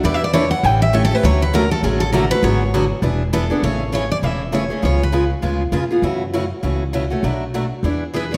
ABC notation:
X:1
M:4/4
L:1/8
Q:"Swing" 1/4=200
K:Emix
V:1 name="Steel-string acoustic guitar"
(3d e d c f =g e (3c A B | c B ^A =A G A ^A B | c4 z2 A2 | [K:A] c2 c d e2 c2 |
c B2 z4 z | z8 | z6 B z |]
V:2 name="Steel-string acoustic guitar"
[E,=G,DEB] z [E,G,DEB] z [C,E,A,C=G] z [C,E,A,CG] [A,CG] | [D,F,A,CF] z [D,F,A,CF] z [D,F,A,CF] z [D,F,A,CF] [A,CF] | [D,F,B,FG] z [D,F,B,FG] z [E,B,DG] z [E,B,DG] [B,DG] | [K:A] [C,E,A,CG] z [C,E,A,CG] z [C,E,A,CG] z [C,E,A,CG] [A,CG] |
[C,G,B,^EG] z [C,G,B,EG] z [C,G,B,EG] z [C,G,B,EG] [B,EG] | [C,E,A,CF] z [C,E,A,CF] z [C,E,A,CF] z [C,E,A,CF] [A,CF] | [B,,F,A,DF] z [B,,F,A,DF] z [E,B,DG] z [E,B,DG] [B,DG] |]
V:3 name="Upright bass" clef=bass
E,,4 A,,,4 | D,,4 A,,,4 | G,,,4 E,,,4 | [K:A] A,,,4 E,,,4 |
C,,4 D,,2 ^E,,2 | F,,4 C,,4 | B,,,4 E,,4 |]